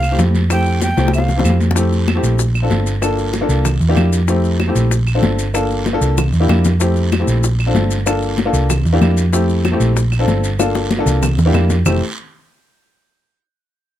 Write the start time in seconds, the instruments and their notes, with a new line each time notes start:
Already playing: picked electric bass C2, flute F5
0.03 high conga, claves, maracas
0.11 upright piano A3 C4 E4 G4
0.19 picked electric bass F2, high bongo, low bongo, high conga, short guiro, maracas
0.35 high conga, short guiro, maracas
0.50 upright piano A3 C4 E4 G4, flute G5, high bongo, high conga, long guiro, claves, maracas
0.66 high bongo, high conga, maracas
0.81 flute G5, high bongo, high conga, short guiro, maracas
0.97 picked electric bass C2, upright piano A3 C4 E4 G4, high bongo, short guiro, maracas
1.08 high bongo
1.13 flute F5, high conga, long guiro, claves, maracas
1.18 high bongo
1.29 low bongo, high conga, maracas
1.36 upright piano A3 C4 E4 G4, low bongo
1.45 picked electric bass F2, high conga, short guiro, claves, maracas
1.50 low bongo
1.60 high conga, short guiro, maracas
1.71 low bongo
1.75 upright piano A3 C4 E4 G4, high bongo, high conga, long guiro, maracas
1.92 high bongo, high conga, maracas
2.07 high bongo, high conga, short guiro, claves, maracas
2.15 upright piano A3 C4 E4 G4
2.23 picked electric bass A#1, high bongo, high conga, short guiro, maracas
2.39 high bongo, high conga, long guiro, maracas
2.55 high bongo, high conga, claves, maracas
2.62 upright piano C4 D4 F4 A4
2.70 picked electric bass G1, high bongo, low bongo, high conga, short guiro, maracas
2.86 short guiro, maracas
3.02 upright piano A#3 D4 F4 A4, high bongo, high conga, long guiro, claves, maracas
3.18 high bongo, high conga, maracas
3.33 high bongo, high conga, short guiro, maracas
3.41 upright piano A#3 D4 F4 A4
3.49 picked electric bass C2, high bongo, high conga, short guiro, maracas
3.65 high bongo, high conga, low conga, long guiro, claves, maracas
3.80 picked electric bass E2, high bongo, high conga, maracas
3.88 upright piano A#3 D4 E4 G4
3.96 picked electric bass F2, high bongo, low bongo, high conga, short guiro, claves, maracas
4.12 high conga, short guiro, maracas
4.28 upright piano A3 C4 E4 G4, high bongo, high conga, long guiro, maracas
4.44 high bongo, high conga, maracas
4.60 high bongo, high conga, short guiro, claves, maracas
4.67 upright piano A3 C4 E4 G4
4.75 picked electric bass A#1, high bongo, high conga, short guiro, maracas
4.91 high bongo, high conga, long guiro, maracas
5.07 high bongo, high conga, claves, maracas
5.15 upright piano C4 D4 F4 A4
5.22 picked electric bass G1, high bongo, low bongo, high conga, short guiro, maracas
5.39 short guiro, maracas
5.54 upright piano A#3 D4 F4 A4, high bongo, high conga, long guiro, claves, maracas
5.70 high bongo, high conga, maracas
5.86 high bongo, high conga, short guiro, maracas
5.93 upright piano A#3 D4 F4 A4
6.01 picked electric bass C2, high conga, short guiro, maracas
6.17 high bongo, high conga, low conga, long guiro, claves, maracas
6.33 picked electric bass E2, high conga, maracas
6.40 upright piano A#3 D4 E4 G4
6.49 picked electric bass F2, low bongo, high conga, short guiro, claves, maracas
6.64 low bongo, high conga, short guiro, maracas
6.80 upright piano A3 C4 E4 G4, high bongo, high conga, long guiro, maracas
6.96 high bongo, maracas
7.12 high bongo, high conga, short guiro, claves, maracas
7.19 upright piano A3 C4 E4 G4
7.27 picked electric bass A#1, high bongo, short guiro, maracas
7.43 high bongo, high conga, long guiro, maracas
7.59 high bongo, high conga, claves, maracas
7.66 upright piano C4 D4 F4 A4
7.75 picked electric bass G1, high bongo, low bongo, high conga, short guiro, maracas
7.91 short guiro, maracas
8.06 upright piano A#3 D4 F4 A4, high bongo, high conga, long guiro, claves, maracas
8.22 high bongo, high conga, maracas
8.38 high bongo, high conga, short guiro, maracas
8.45 upright piano A#3 D4 F4 A4
8.53 picked electric bass C2, high bongo, high conga, short guiro, maracas
8.70 high bongo, high conga, low conga, long guiro, claves, maracas
8.85 picked electric bass E2, high bongo, high conga, maracas
8.93 upright piano A#3 D4 E4 G4
9.01 picked electric bass F2, high bongo, low bongo, high conga, short guiro, claves, maracas
9.17 short guiro, maracas
9.32 upright piano A3 C4 E4 G4, high bongo, high conga, long guiro, maracas
9.49 high bongo, high conga, maracas
9.64 high bongo, high conga, short guiro, claves, maracas
9.72 upright piano A3 C4 E4 G4
9.80 picked electric bass A#1, high bongo, high conga, short guiro, maracas
9.96 high bongo, high conga, long guiro, maracas
10.12 high bongo, high conga, claves, maracas
10.19 upright piano C4 D4 F4 A4
10.27 picked electric bass G1, high bongo, low bongo, high conga, short guiro, maracas
10.44 short guiro, maracas
10.59 upright piano A#3 D4 F4 A4, high bongo, high conga, long guiro, claves, maracas
10.75 high bongo, high conga, maracas
10.91 high conga, short guiro, maracas
10.98 upright piano A#3 D4 F4 A4
11.06 picked electric bass C2, low bongo, high conga, short guiro, maracas
11.23 low bongo, high conga, low conga, long guiro, claves, maracas
11.38 picked electric bass E2, low bongo, high conga, low conga, maracas
11.45 upright piano A#3 D4 E4 G4
11.54 picked electric bass F2, low bongo, high conga, short guiro, claves, maracas
11.70 low bongo, high conga, short guiro, maracas
11.85 picked electric bass F1, upright piano A3 C4 E4 G4, low bongo, low conga, long guiro, claves, maracas